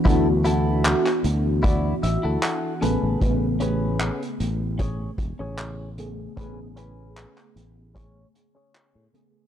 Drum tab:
HH |x-x-xxx-x-x-x-x-|x-x-xxx-x-x-x-x-|x-x-xxx-x-x-x-x-|
CP |----xx------x---|----x-------x---|----xx------x---|
BD |o-------o-------|o-------o-o-----|o-------o-------|